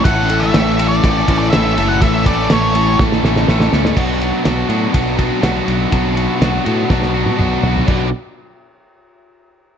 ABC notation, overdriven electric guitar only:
X:1
M:4/4
L:1/8
Q:1/4=123
K:Bm
V:1 name="Overdriven electric guitar"
[A,,E,A,CA] [A,,E,A,CA] [A,,E,A,CA] [A,,E,A,CA] [A,,E,A,CA] [A,,E,A,CA] [A,,E,A,CA] [A,,E,A,CA] | [A,,E,A,CA] [A,,E,A,CA] [A,,E,A,CA] [A,,E,A,CA] [A,,E,A,CA] [A,,E,A,CA] [A,,E,A,CA] [A,,E,A,CA] | [B,,F,B,DF] [B,DF] [F,B,DF] [B,,F,B,DF] [F,B,DF] [B,DF] [B,,F,B,DF] [B,DF] | [B,,F,B,DF] [B,DF] [F,B,DF] [B,,F,B,DF] [F,B,DF] [B,DF] [B,,F,B,DF] [B,DF] |
[B,,F,B,DFd] z6 z |]